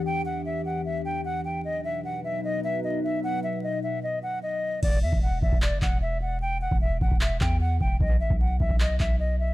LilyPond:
<<
  \new Staff \with { instrumentName = "Flute" } { \time 4/4 \key b \phrygian \tempo 4 = 151 g''8 fis''8 e''8 fis''8 e''8 g''8 fis''8 g''8 | dis''8 e''8 fis''8 e''8 dis''8 e''8 dis''8 e''8 | fis''8 e''8 dis''8 e''8 dis''8 fis''8 dis''4 | d''8 e''8 fis''8 e''8 d''8 fis''8 e''8 fis''8 |
g''8 fis''8 e''8 fis''8 e''8 g''8 fis''8 g''8 | dis''8 e''8 fis''8 e''8 dis''8 e''8 dis''8 e''8 | }
  \new Staff \with { instrumentName = "Analog synth pad" } { \time 4/4 \key b \phrygian <e, e d' g'>1 | <b, fis dis' b'>1~ | <b, fis dis' b'>1 | r1 |
r1 | r1 | }
  \new Staff \with { instrumentName = "808-style bass" } { \clef bass \time 4/4 \key b \phrygian r1 | r1 | r1 | e,,8 e,16 e,,8. e,,8. g,,16 e,,4.~ |
e,,8. e,,8. e,,4 e,4 e,,8 | b,,8 a,,16 b,,8. b,,4 b,,4. | }
  \new DrumStaff \with { instrumentName = "Drums" } \drummode { \time 4/4 r4 r4 r4 r4 | r4 r4 r4 r4 | r4 r4 r4 r4 | <cymc bd>8. bd16 r8 bd16 bd16 hc8 <hc bd>8 r4 |
r8. bd16 r8 bd16 bd16 hc8 <hc bd>8 r8 bd8 | bd8. bd16 r8 bd16 bd16 hc8 <hc bd>8 r4 | }
>>